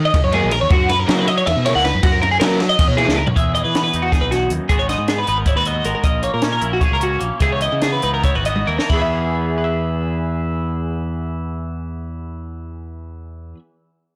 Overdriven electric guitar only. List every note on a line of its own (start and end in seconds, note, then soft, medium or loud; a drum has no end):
0.15 muted overdriven electric guitar stroke soft
0.33 0.50 D#3 medium
0.33 0.51 F#3 loud
0.33 0.51 A#3 loud
0.33 0.51 D#4 loud
0.52 muted overdriven electric guitar stroke medium
0.71 muted overdriven electric guitar stroke soft
0.90 muted overdriven electric guitar stroke medium
1.08 1.27 C#3 medium
1.08 1.27 E3 medium
1.08 1.27 A#3 loud
1.08 1.26 E4 medium
1.28 muted overdriven electric guitar stroke medium
1.47 muted overdriven electric guitar stroke medium
1.65 1.83 C#3 medium
1.65 1.84 E3 medium
1.65 1.85 A#3 medium
1.65 1.84 E4 loud
1.85 muted overdriven electric guitar stroke medium
2.04 muted overdriven electric guitar stroke medium
2.22 muted overdriven electric guitar stroke medium
2.42 2.60 C#3 medium
2.42 2.60 E3 medium
2.42 2.59 A#3 loud
2.42 2.59 E4 medium
2.60 muted overdriven electric guitar stroke medium
2.80 muted overdriven electric guitar stroke medium
2.98 3.17 C#3 medium
2.98 3.17 E3 medium
2.98 3.17 A#3 loud
2.98 3.17 E4 loud
3.18 muted overdriven electric guitar stroke soft